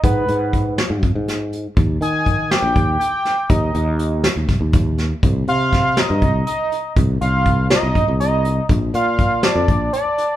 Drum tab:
HH |xxxxxxx|xxxxxxx|xxxxxxx|xxxxxxx|
SD |---o-o-|---o--o|---oo-o|--oo---|
BD |o-o-o--|o-o-o--|o---oo-|o-o-o--|

HH |xxxxxxx|xxxxxxx|
SD |---o---|---o---|
BD |o-o-o--|o-o-o--|